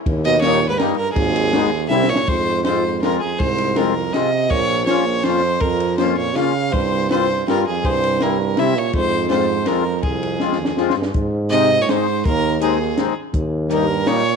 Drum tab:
RD |x--x--x-----x-----|x--x--x-----------|x-----x-----x-----|x--x--x-----x-----|
HH |------------------|------------------|------------------|------------------|
SD |------o-----o-----|------o-----o-o-o-|------o-----o-----|------o-----o-----|
BD |o-----------------|o-----------------|o-----------------|o-----------------|

RD |x-----x-----x-----|x--x--x-----x-----|x-----x-----x-----|x--x--x-----x-----|
HH |------------------|------------------|------------------|------------------|
SD |------o-----o-----|------o-----o-----|------o-----o-----|------o-----o-----|
BD |o-----------------|o-----------------|o-----------------|o-----------------|

RD |x-----x-----x-----|x--x--------------|------------------|------------------|
HH |------------------|------------------|x-----x-----x-----|x-----x-----x-----|
SD |------o-----o-----|------o-o-o-o-o-o-|------------o-----|------------o-----|
BD |o-----------------|o-----------------|o-----------------|o-----------------|

RD |------------------|
HH |x-----x-----x-----|
SD |------------o-----|
BD |o-----------------|